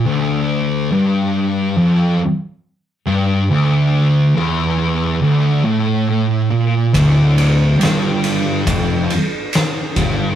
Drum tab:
RD |--------|--------|xxxxxxxx|
SD |--------|--------|--o---o-|
BD |--------|--------|o---o--o|